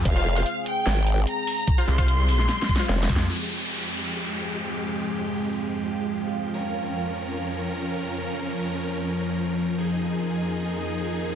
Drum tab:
CC |------------------------------------------------|------------------------------------------------|x-----------------------------------------------|------------------------------------------------|
HH |x--------x--x-----x-----x-----x-----x-----o-----|x--------x--x-----o-----x-----x-----x-----o-----|------------------------------------------------|------------------------------------------------|
SD |------------------------o-----------------------|---------------------o--o---o---o---o---o---o---|------------------------------------------------|------------------------------------------------|
BD |o-----------------------------------------------|o--------o--------------------o-----------o-----|------------------------------------------------|------------------------------------------------|

CC |------------------------------------------------|------------------------------------------------|------------------------------------------------|
HH |------------------------------------------------|------------------------------------------------|------------------------------------------------|
SD |------------------------------------------------|------------------------------------------------|------------------------------------------------|
BD |------------------------------------------------|------------------------------------------------|------------------------------------------------|